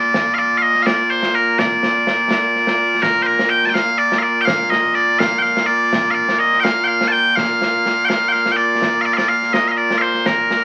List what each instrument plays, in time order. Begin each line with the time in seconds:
Already playing: bagpipes A#2 A#3 F4 D5
0.14 concert bass drum, snare
0.34 bagpipes F5
0.38 bagpipes D5
0.57 bagpipes F5
0.62 bagpipes D#5
0.75 snare
0.82 bagpipes D5 F5
0.87 snare
1.10 bagpipes C5
1.23 snare
1.35 bagpipes A#4
1.59 bagpipes D5, concert bass drum, snare
1.83 snare
2.07 snare
2.31 snare
2.55 snare
2.67 snare
3.02 bagpipes A#4, concert bass drum, snare
3.22 bagpipes A#4 C5
3.39 snare
3.49 bagpipes G5
3.64 bagpipes A5, snare
3.69 bagpipes G5
3.74 bagpipes F5, snare
3.98 bagpipes D5
4.12 snare
4.18 bagpipes F5
4.22 bagpipes D5
4.41 bagpipes G5
4.45 bagpipes F5, concert bass drum, snare
4.70 bagpipes D#5, snare
4.95 bagpipes D5
5.19 bagpipes F5, concert bass drum, snare
5.39 bagpipes F5 G5
5.45 snare
5.57 snare
5.66 bagpipes D5
5.93 concert bass drum, snare
6.11 bagpipes D5 F5
6.29 snare
6.39 bagpipes D#5
6.53 snare
6.60 bagpipes F5 G5
6.65 snare
6.84 bagpipes F5 G5
7.01 snare
7.08 bagpipes A5
7.12 bagpipes G5
7.36 bagpipes F5, concert bass drum, snare
7.62 snare
7.86 snare
8.05 bagpipes F5 G5
8.10 snare
8.29 bagpipes F5 G5
8.34 snare
8.46 snare
8.52 bagpipes G5
8.56 bagpipes D5
8.82 concert bass drum, snare
9.01 bagpipes F5
9.05 bagpipes D5
9.13 bagpipes D5 F5
9.18 snare
9.28 bagpipes F5
9.42 snare
9.53 bagpipes D#5, snare
9.68 bagpipes D#5 F5
9.77 bagpipes D5
9.90 snare
9.98 bagpipes C5 F5
10.14 snare
10.26 bagpipes A#4, concert bass drum, snare
10.51 snare